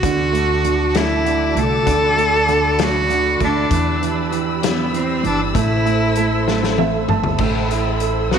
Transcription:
Already playing: cello F#4
0.03 upright bass D2, grand piano D3, string section F#4 D5 A5 D6, kick, closed hi-hat
0.33 grand piano A3, closed hi-hat
0.64 grand piano D3, closed hi-hat
0.95 grand piano A3, cello E4, snare, closed hi-hat
1.26 grand piano D3, closed hi-hat
1.55 upright bass C2, grand piano A3, cello A4, closed hi-hat
1.86 upright bass D2, grand piano D3, string section B5, kick, closed hi-hat
2.16 grand piano A3, closed hi-hat
2.48 grand piano D3, closed hi-hat
2.78 grand piano A3, snare, closed hi-hat
2.83 cello F#4
3.10 grand piano D3, closed hi-hat
3.40 upright bass D2, grand piano A3, cello D4, kick, closed hi-hat
3.71 upright bass E2, grand piano E3, string section G4 E6, kick, closed hi-hat
4.02 grand piano E3, closed hi-hat
4.31 grand piano E3, closed hi-hat
4.62 grand piano E3, cello B3, snare, closed hi-hat
4.92 grand piano E3, cello C4, closed hi-hat
5.24 upright bass G1, grand piano E3, cello D4, closed hi-hat
5.54 upright bass A1, grand piano A3, cello E4, string section A4 C5, kick, closed hi-hat
5.85 grand piano A3, closed hi-hat
6.15 grand piano A3, closed hi-hat
6.48 grand piano A3, snare
6.64 snare
6.78 grand piano A3 E5, high tom
7.08 upright bass G1, grand piano A3 A5, mid tom
7.24 floor tom
7.38 upright bass A1, grand piano A3, string section A4 C5 B5 E6, kick, crash
7.71 grand piano E4, closed hi-hat
8.00 grand piano A4, closed hi-hat
8.30 upright bass B1, grand piano B3, string section F#4 B4 A5 D#6, cello F#4, snare

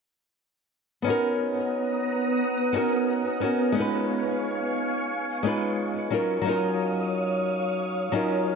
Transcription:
1.02 nylon-string guitar B3 C#4
1.06 string machine B3 F#5 A#5 D#6, nylon-string guitar D#4 F#4 A#4
2.73 nylon-string guitar B3 C#4 D#4 F#4
2.77 nylon-string guitar A#4
3.40 nylon-string guitar B3 C#4 D#4 F#4
3.44 nylon-string guitar A#4
3.72 nylon-string guitar G#3 C#4, string machine F5 G#5 C#6
3.76 nylon-string guitar D#4 F4 B4
5.43 nylon-string guitar G#3 C#4 D#4 F4
5.47 nylon-string guitar B4
6.10 nylon-string guitar F#3 C#4 D#4 F4 A#4, string machine C#5 F5 D#6
6.42 nylon-string guitar F#3 C#4 D#4
6.48 nylon-string guitar F4 A#4
8.12 nylon-string guitar F#3 C#4 D#4 F4 A#4

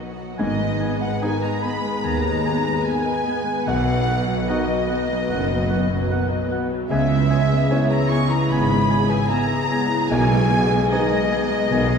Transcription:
Already playing: cello section B2, harp B2 F#3 B3 D#4, grand piano F#3 D#4 F#4, viola section F#3, violin section F#4 F#5
0.00 viola section B3
0.38 double bass section G#1, grand piano G#2, harp G#2, cello section G#2, viola section D#3 B4, french horn section B3 G#4, clarinet B3, violin section D#5, flute D#5, oboe G#5
0.60 viola section G#3, harp B3
0.80 clarinet B3, viola section B3, harp D#4, oboe G#5
1.00 viola section G#3, harp B4, violin section F#5, flute F#5
1.21 viola section D#3, grand piano B3 D#4 G#4, clarinet B3, violin section G#5, flute G#5, harp G#5, oboe G#5
1.42 viola section G#3, harp D#5, violin section A#5, flute A#5
1.62 viola section B3, clarinet B3, harp G#4, oboe G#5, flute B5, violin section B5
1.82 viola section G#3, harp B3
2.03 double bass section D#2, cello section D#2, harp D#3, viola section D#3, clarinet B3, oboe G#5, flute A#5, violin section A#5
2.23 viola section G#3, harp B3
2.44 viola section B3, clarinet B3, harp D#4, oboe G#5
2.64 viola section G#3, harp B4
2.84 viola section D#3, clarinet B3, harp G#5, violin section G#5, flute G#5, oboe G#5
3.05 viola section G#3, harp D#5
3.25 clarinet B3, viola section B3, harp G#4, oboe G#5
3.45 viola section G#3, harp B3
3.66 double bass section B1, grand piano B1, harp B2, cello section B2, viola section D#3, clarinet B3, french horn section F#4, violin section F#5, flute F#5, oboe F#5
3.87 viola section F#3, harp B3
4.07 viola section B3, clarinet B3, harp D#4, oboe F#5
4.28 viola section F#3, harp B4
4.47 viola section D#3, grand piano B3 D#4 F#4, clarinet B3, flute D#5, violin section D#5, harp F#5, oboe F#5
4.68 viola section F#3, harp D#5
4.89 viola section B3, clarinet B3, harp F#4, oboe F#5
5.10 viola section F#3, harp B3
5.29 double bass section F#1, cello section F#2, viola section D#3, harp F#3, clarinet B3, oboe F#5
5.50 viola section F#3, harp B3
5.69 viola section B3, clarinet B3, harp D#4, oboe F#5
5.88 viola section F#3, harp B4
6.09 viola section D#3, clarinet B3, harp F#5, oboe F#5
6.29 viola section F#3, harp D#5
6.48 viola section B3, clarinet B3, harp F#4, oboe F#5
6.70 viola section F#3, harp B3
6.89 double bass section C#2, grand piano C#2, harp C#3, viola section C#3 G#4, cello section C#3, french horn section B3 G#4, clarinet B3, violin section E5, flute E5, oboe G#5
7.09 viola section E3, harp B3
7.30 viola section G#3, clarinet B3, harp C#4, oboe G#5
7.51 viola section B3, harp B4
7.70 viola section G#3, grand piano B3 C#4 E4, clarinet B3, harp E5, oboe G#5
7.90 viola section E3, harp C#5, flute A#5, violin section A#5
8.09 viola section C#3, clarinet B3, harp E4, oboe G#5, flute C#6, violin section C#6
8.30 viola section E3, harp B3, violin section A#5, flute A#5
8.48 double bass section G#1, cello section G#2, viola section G#3, harp G#3, clarinet B3, oboe G#5, flute B5, violin section B5
8.69 harp B3, viola section B3
8.88 viola section G#3, harp C#4, oboe G#5
8.92 clarinet B3
9.08 viola section E3, harp B4, violin section G#5, flute G#5
9.28 viola section C#3, clarinet B3, harp E5, oboe G#5, flute A#5, violin section A#5
9.49 viola section E3, harp C#5
9.69 viola section G#3, clarinet B3, harp E4, oboe G#5
9.89 harp B3, viola section B3
10.09 double bass section B1, grand piano B1, harp B2, cello section B2, viola section D#3, clarinet B3, flute G#5, violin section G#5, oboe G#5
10.29 viola section G#3, harp B3
10.49 viola section B3, clarinet B3, harp D#4, oboe G#5
10.70 viola section G#3, harp B4
10.90 viola section D#3, grand piano B3 D#4 G#4, clarinet B3, flute D#5, violin section D#5, harp G#5, oboe G#5
11.10 viola section G#3, harp D#5
11.30 viola section B3, clarinet B3, harp G#4, oboe G#5
11.50 viola section G#3, harp B3
11.69 double bass section B1, harp B2, cello section B2, viola section D#3, clarinet B3, oboe G#5
11.89 harp G#3, viola section G#3

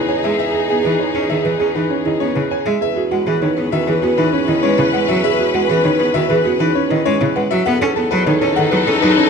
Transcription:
Already playing: bassoon E2, string section D#4 G#4, marimba E4, grand piano B4
0.09 marimba C#5, grand piano G#5
0.17 alto flute G#4
0.23 cello G#3, marimba G#4, grand piano E5
0.39 marimba B4, grand piano E5
0.47 alto flute G#4
0.54 marimba G#4, grand piano G#4
0.69 cello B3, marimba G#4, grand piano G#5
0.79 alto flute G#4
0.84 cello E3, marimba B4, grand piano B4
0.99 marimba D#4, grand piano C#5
1.10 alto flute G#4, marimba C#5
1.15 cello C#4, grand piano G#4
1.29 cello D#3, marimba G#4, grand piano E5
1.42 cello E3, alto flute G#4, marimba B4, grand piano B4
1.60 cello C#4, marimba G#4, grand piano G#4
1.73 cello E3, marimba D#4, alto flute G#4, grand piano B4
1.90 marimba C#4, grand piano C#5
2.04 cello D#3, marimba E4, alto flute G#4, grand piano D#5
2.20 cello B3, marimba C#4, grand piano C#5
2.35 cello C#3, marimba E4, alto flute G#4, grand piano B4
2.51 marimba C#5, grand piano G#5
2.66 cello G#3, marimba G#4, grand piano E5
2.81 bassoon E2, string section C#4 B4, marimba G#4, alto flute B4, grand piano E5
2.96 marimba F#4, grand piano G#4
3.11 cello G#3, marimba F#4, alto flute B4, grand piano F#5
3.26 cello E3, marimba G#4, grand piano B4
3.42 cello D#3, marimba D#4, alto flute B4, grand piano C#5
3.57 cello B3, grand piano G#4, marimba B4
3.72 cello D#3, marimba F#4, alto flute B4, grand piano E5
3.87 cello E3, marimba G#4, grand piano B4
4.02 cello B3, marimba F#4, grand piano G#4
4.07 alto flute B4
4.18 cello E3, marimba D#4, grand piano B4
4.33 marimba C#4, grand piano C#5
4.38 alto flute B4
4.48 cello D#3, marimba E4, grand piano D#5
4.63 cello G#3, marimba C#4, grand piano C#5
4.69 alto flute B4
4.78 cello C#3, marimba E4, grand piano B4
4.93 cello G#3, marimba B4, grand piano F#5
5.00 alto flute B4
5.08 cello F#3, marimba F#4, grand piano E5
5.24 marimba G#4, grand piano E5
5.31 alto flute B4
5.39 marimba F#4, grand piano G#4
5.54 cello G#3, marimba F#4, grand piano F#5
5.62 alto flute B4
5.69 cello E3, marimba G#4, grand piano B4
5.84 cello D#3, marimba D#4, grand piano C#5
5.94 alto flute B4
5.99 cello B3, grand piano G#4, marimba B4
6.14 cello D#3, marimba F#4, grand piano E5
6.26 cello E3, alto flute B4, grand piano B4
6.30 marimba G#4
6.45 cello B3, marimba F#4, grand piano G#4
6.57 cello E3, marimba D#4, alto flute B4, grand piano B4
6.75 marimba C#4, grand piano C#5
6.88 cello D#3, marimba E4, alto flute B4, grand piano D#5
7.06 cello G#3, marimba C#4, grand piano C#5
7.19 cello C#3, marimba E4, alto flute B4, grand piano B4
7.36 cello G#3, marimba B4, grand piano F#5
7.51 cello F#3, marimba F#4, grand piano E5
7.66 bassoon E2, cello B3, string section D#4 A4, alto flute A4, marimba B4, grand piano F#5
7.81 cello C#4, grand piano A4, marimba A4
7.96 cello B3, marimba A4, alto flute A4, grand piano A5
8.11 cello F#3, grand piano B4, marimba B4
8.26 cello D#3, marimba D#4, alto flute A4, grand piano C#5
8.41 cello C#4, grand piano A4, marimba C#5
8.56 cello D#3, marimba A4, alto flute A4, grand piano F#5
8.71 cello F#3, grand piano B4, marimba B4
8.87 cello C#4, grand piano A4, marimba A4, alto flute A4
9.02 cello F#3, marimba D#4, grand piano B4
9.16 marimba C#4, grand piano C#5
9.22 alto flute A4

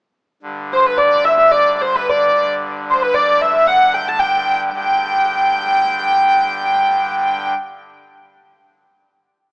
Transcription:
0.43 pipe organ G2 D3
0.73 hurdy-gurdy C5
0.80 hurdy-gurdy C5
0.86 hurdy-gurdy B4
0.98 hurdy-gurdy D5
1.24 hurdy-gurdy E5
1.37 hurdy-gurdy E5
1.52 hurdy-gurdy D5
1.76 hurdy-gurdy D5
1.81 hurdy-gurdy C5
1.96 hurdy-gurdy B4
2.10 hurdy-gurdy D5
2.90 hurdy-gurdy C5
3.02 hurdy-gurdy B4
3.14 hurdy-gurdy D5
3.41 hurdy-gurdy E5
3.54 hurdy-gurdy E5
3.67 hurdy-gurdy F#5
3.94 hurdy-gurdy G5
4.08 hurdy-gurdy A5
4.20 hurdy-gurdy G5
4.73 pipe organ G2 D3, hurdy-gurdy G5

